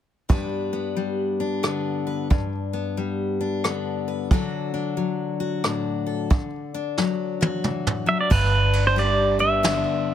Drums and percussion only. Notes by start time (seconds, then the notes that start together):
0.30 kick
1.64 cross-stick
2.31 kick
3.64 cross-stick
4.31 kick
5.64 cross-stick
6.31 kick
6.98 snare
7.42 high tom
7.64 mid tom
7.87 mid tom
8.31 kick, crash
8.73 ride
8.98 ride
9.64 snare, ride